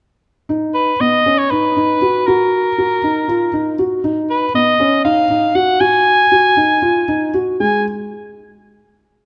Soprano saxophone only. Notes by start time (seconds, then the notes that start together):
0.74 B4
1.01 D#5
1.38 C#5
1.50 B4
2.26 A#4
4.30 B4
4.55 D#5
5.05 F5
5.56 F#5
5.81 G#5
7.60 G#5